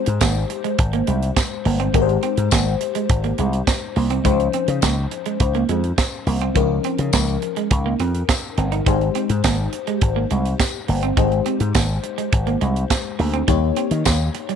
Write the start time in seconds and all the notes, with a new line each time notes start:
Already playing: G#3 D#4 G4 C5
0.06 G#2, muted clean electric guitar stroke, closed hi-hat
0.21 G#1 A#3, kick, snare, closed hi-hat, tambourine
0.50 muted clean electric guitar stroke, closed hi-hat
0.64 G#3, closed hi-hat
0.79 G#1, muted clean electric guitar stroke, kick, closed hi-hat
0.93 A#3, closed hi-hat
1.07 C2 G#3, closed hi-hat
1.23 closed hi-hat
1.36 muted clean electric guitar stroke, kick, snare, closed hi-hat, tambourine
1.65 G1 A#3, open hi-hat
1.80 C4, closed hi-hat
1.94 G#1 G#3 D#4 G4 A#4, kick, closed hi-hat
2.02 C5
2.09 closed hi-hat
2.23 C4, closed hi-hat
2.37 G#2, muted clean electric guitar stroke, closed hi-hat
2.51 G#1 A#3, kick, snare, closed hi-hat, tambourine
2.81 muted clean electric guitar stroke, closed hi-hat
2.95 G#3, closed hi-hat
3.09 G#1, muted clean electric guitar stroke, kick, closed hi-hat
3.24 A#3, closed hi-hat
3.38 C2 G#3, closed hi-hat
3.53 closed hi-hat
3.67 muted clean electric guitar stroke, kick, snare, closed hi-hat, tambourine
3.96 C2 A#3, open hi-hat
4.10 C4, closed hi-hat
4.24 C#2 D#3 G#3 C#4 D#4 C5, kick, closed hi-hat
4.31 F3
4.40 closed hi-hat
4.53 C4, closed hi-hat
4.68 C#3, muted clean electric guitar stroke, closed hi-hat
4.82 C#2 A#3, kick, snare, closed hi-hat, tambourine
5.11 muted clean electric guitar stroke, closed hi-hat
5.26 G#3, closed hi-hat
5.40 C#2, muted clean electric guitar stroke, kick, closed hi-hat
5.54 A#3, closed hi-hat
5.69 F2 G#3, closed hi-hat
5.84 closed hi-hat
5.98 muted clean electric guitar stroke, kick, snare, closed hi-hat, tambourine
6.26 C2 A#3, open hi-hat
6.41 C4, closed hi-hat
6.55 C#2 F3 G#3 C#4 D#4 A#4, kick, closed hi-hat
6.84 C4, closed hi-hat
6.98 C#3, muted clean electric guitar stroke, closed hi-hat
7.13 C#2 A#3, kick, snare, closed hi-hat, tambourine
7.28 closed hi-hat
7.42 muted clean electric guitar stroke, closed hi-hat
7.56 G#3, closed hi-hat
7.71 C#2, muted clean electric guitar stroke, kick, closed hi-hat
7.86 A#3
8.00 F2 C4, closed hi-hat
8.15 closed hi-hat
8.29 muted clean electric guitar stroke, kick, snare, closed hi-hat, tambourine
8.57 G1 C4, closed hi-hat
8.72 D#4, closed hi-hat
8.86 G#1 G#3 D#4 G4 C5, kick, closed hi-hat
9.01 closed hi-hat
9.15 C4, closed hi-hat
9.30 G#2, muted clean electric guitar stroke, closed hi-hat
9.44 G#1 A#3, kick, snare, closed hi-hat, tambourine
9.73 muted clean electric guitar stroke, closed hi-hat
9.87 G#3, closed hi-hat
10.01 G#1, muted clean electric guitar stroke, kick, closed hi-hat
10.16 A#3
10.31 C2 G#3, closed hi-hat
10.46 closed hi-hat
10.60 muted clean electric guitar stroke, kick, snare, closed hi-hat, tambourine
10.88 G1 A#3, open hi-hat
11.03 C4, closed hi-hat
11.17 G#1 G#3 D#4 G4 C5, kick, closed hi-hat
11.32 closed hi-hat
11.46 C4, closed hi-hat
11.60 G#2, muted clean electric guitar stroke, closed hi-hat
11.75 G#1 A#3, kick, snare, closed hi-hat, tambourine
12.04 muted clean electric guitar stroke, closed hi-hat
12.18 G#3, closed hi-hat
12.32 G#1, muted clean electric guitar stroke, kick, closed hi-hat
12.47 A#3, closed hi-hat
12.61 C2 G#3, closed hi-hat
12.76 closed hi-hat
12.90 muted clean electric guitar stroke, kick, snare, closed hi-hat, tambourine
13.19 D2 A#3, open hi-hat
13.34 C4, closed hi-hat
13.47 D#2 G3 A#3 D#4 G4 C#5, kick, closed hi-hat
13.76 C4, closed hi-hat
13.91 D#3, muted clean electric guitar stroke, closed hi-hat
14.05 D#2 A#3, kick, snare, closed hi-hat, tambourine
14.34 muted clean electric guitar stroke, closed hi-hat
14.49 G3, closed hi-hat